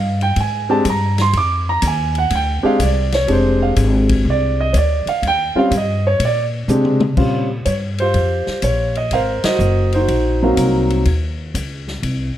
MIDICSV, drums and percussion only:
0, 0, Header, 1, 2, 480
1, 0, Start_track
1, 0, Tempo, 485830
1, 1327, Time_signature, 4, 2, 24, 8
1, 12229, End_track
2, 0, Start_track
2, 0, Title_t, "Drums"
2, 208, Note_on_c, 9, 51, 40
2, 307, Note_off_c, 9, 51, 0
2, 357, Note_on_c, 9, 51, 58
2, 360, Note_on_c, 9, 36, 22
2, 456, Note_off_c, 9, 51, 0
2, 459, Note_off_c, 9, 36, 0
2, 839, Note_on_c, 9, 44, 52
2, 839, Note_on_c, 9, 51, 66
2, 841, Note_on_c, 9, 36, 21
2, 938, Note_off_c, 9, 44, 0
2, 938, Note_off_c, 9, 51, 0
2, 939, Note_off_c, 9, 36, 0
2, 1166, Note_on_c, 9, 51, 46
2, 1168, Note_on_c, 9, 38, 47
2, 1265, Note_off_c, 9, 51, 0
2, 1267, Note_off_c, 9, 38, 0
2, 1317, Note_on_c, 9, 51, 57
2, 1321, Note_on_c, 9, 36, 23
2, 1416, Note_off_c, 9, 51, 0
2, 1420, Note_off_c, 9, 36, 0
2, 1797, Note_on_c, 9, 44, 64
2, 1797, Note_on_c, 9, 51, 73
2, 1802, Note_on_c, 9, 36, 21
2, 1896, Note_off_c, 9, 44, 0
2, 1896, Note_off_c, 9, 51, 0
2, 1900, Note_off_c, 9, 36, 0
2, 2124, Note_on_c, 9, 51, 44
2, 2223, Note_off_c, 9, 51, 0
2, 2277, Note_on_c, 9, 51, 65
2, 2281, Note_on_c, 9, 36, 20
2, 2376, Note_off_c, 9, 51, 0
2, 2380, Note_off_c, 9, 36, 0
2, 2763, Note_on_c, 9, 36, 22
2, 2763, Note_on_c, 9, 44, 59
2, 2763, Note_on_c, 9, 51, 69
2, 2862, Note_off_c, 9, 36, 0
2, 2862, Note_off_c, 9, 44, 0
2, 2862, Note_off_c, 9, 51, 0
2, 3086, Note_on_c, 9, 51, 46
2, 3088, Note_on_c, 9, 38, 46
2, 3185, Note_off_c, 9, 51, 0
2, 3187, Note_off_c, 9, 38, 0
2, 3242, Note_on_c, 9, 36, 23
2, 3243, Note_on_c, 9, 51, 51
2, 3341, Note_off_c, 9, 36, 0
2, 3341, Note_off_c, 9, 51, 0
2, 3719, Note_on_c, 9, 44, 54
2, 3719, Note_on_c, 9, 51, 64
2, 3721, Note_on_c, 9, 36, 22
2, 3818, Note_off_c, 9, 44, 0
2, 3818, Note_off_c, 9, 51, 0
2, 3820, Note_off_c, 9, 36, 0
2, 4044, Note_on_c, 9, 51, 65
2, 4047, Note_on_c, 9, 36, 56
2, 4143, Note_off_c, 9, 51, 0
2, 4145, Note_off_c, 9, 36, 0
2, 4200, Note_on_c, 9, 36, 21
2, 4299, Note_off_c, 9, 36, 0
2, 4682, Note_on_c, 9, 36, 25
2, 4683, Note_on_c, 9, 44, 56
2, 4683, Note_on_c, 9, 51, 66
2, 4780, Note_off_c, 9, 36, 0
2, 4782, Note_off_c, 9, 44, 0
2, 4782, Note_off_c, 9, 51, 0
2, 5011, Note_on_c, 9, 51, 46
2, 5109, Note_off_c, 9, 51, 0
2, 5163, Note_on_c, 9, 36, 17
2, 5167, Note_on_c, 9, 51, 58
2, 5261, Note_off_c, 9, 36, 0
2, 5266, Note_off_c, 9, 51, 0
2, 5643, Note_on_c, 9, 36, 18
2, 5647, Note_on_c, 9, 44, 53
2, 5647, Note_on_c, 9, 51, 63
2, 5741, Note_off_c, 9, 36, 0
2, 5745, Note_off_c, 9, 44, 0
2, 5745, Note_off_c, 9, 51, 0
2, 6123, Note_on_c, 9, 36, 19
2, 6124, Note_on_c, 9, 51, 69
2, 6222, Note_off_c, 9, 36, 0
2, 6223, Note_off_c, 9, 51, 0
2, 6605, Note_on_c, 9, 44, 63
2, 6607, Note_on_c, 9, 47, 49
2, 6704, Note_off_c, 9, 44, 0
2, 6706, Note_off_c, 9, 47, 0
2, 6765, Note_on_c, 9, 47, 51
2, 6864, Note_off_c, 9, 47, 0
2, 6919, Note_on_c, 9, 47, 83
2, 7018, Note_off_c, 9, 47, 0
2, 7083, Note_on_c, 9, 49, 60
2, 7086, Note_on_c, 9, 36, 67
2, 7182, Note_off_c, 9, 49, 0
2, 7185, Note_off_c, 9, 36, 0
2, 7563, Note_on_c, 9, 44, 46
2, 7563, Note_on_c, 9, 51, 55
2, 7567, Note_on_c, 9, 36, 18
2, 7662, Note_off_c, 9, 44, 0
2, 7662, Note_off_c, 9, 51, 0
2, 7666, Note_off_c, 9, 36, 0
2, 7888, Note_on_c, 9, 51, 41
2, 7987, Note_off_c, 9, 51, 0
2, 8041, Note_on_c, 9, 51, 53
2, 8045, Note_on_c, 9, 36, 17
2, 8140, Note_off_c, 9, 51, 0
2, 8143, Note_off_c, 9, 36, 0
2, 8364, Note_on_c, 9, 38, 32
2, 8463, Note_off_c, 9, 38, 0
2, 8517, Note_on_c, 9, 44, 56
2, 8517, Note_on_c, 9, 51, 57
2, 8524, Note_on_c, 9, 36, 20
2, 8616, Note_off_c, 9, 44, 0
2, 8616, Note_off_c, 9, 51, 0
2, 8623, Note_off_c, 9, 36, 0
2, 8846, Note_on_c, 9, 51, 37
2, 8945, Note_off_c, 9, 51, 0
2, 8999, Note_on_c, 9, 51, 58
2, 9004, Note_on_c, 9, 36, 19
2, 9097, Note_off_c, 9, 51, 0
2, 9103, Note_off_c, 9, 36, 0
2, 9323, Note_on_c, 9, 51, 60
2, 9325, Note_on_c, 9, 38, 72
2, 9422, Note_off_c, 9, 51, 0
2, 9424, Note_off_c, 9, 38, 0
2, 9479, Note_on_c, 9, 44, 49
2, 9578, Note_off_c, 9, 44, 0
2, 9806, Note_on_c, 9, 51, 40
2, 9905, Note_off_c, 9, 51, 0
2, 9963, Note_on_c, 9, 51, 57
2, 9964, Note_on_c, 9, 36, 18
2, 10062, Note_off_c, 9, 51, 0
2, 10063, Note_off_c, 9, 36, 0
2, 10444, Note_on_c, 9, 44, 49
2, 10444, Note_on_c, 9, 51, 63
2, 10445, Note_on_c, 9, 36, 18
2, 10543, Note_off_c, 9, 44, 0
2, 10543, Note_off_c, 9, 51, 0
2, 10544, Note_off_c, 9, 36, 0
2, 10773, Note_on_c, 9, 51, 43
2, 10872, Note_off_c, 9, 51, 0
2, 10921, Note_on_c, 9, 51, 51
2, 10925, Note_on_c, 9, 36, 19
2, 11020, Note_off_c, 9, 51, 0
2, 11024, Note_off_c, 9, 36, 0
2, 11407, Note_on_c, 9, 36, 20
2, 11410, Note_on_c, 9, 44, 57
2, 11410, Note_on_c, 9, 51, 61
2, 11506, Note_off_c, 9, 36, 0
2, 11509, Note_off_c, 9, 44, 0
2, 11509, Note_off_c, 9, 51, 0
2, 11735, Note_on_c, 9, 38, 30
2, 11833, Note_off_c, 9, 38, 0
2, 11887, Note_on_c, 9, 36, 18
2, 11887, Note_on_c, 9, 51, 59
2, 11985, Note_off_c, 9, 36, 0
2, 11986, Note_off_c, 9, 51, 0
2, 12229, End_track
0, 0, End_of_file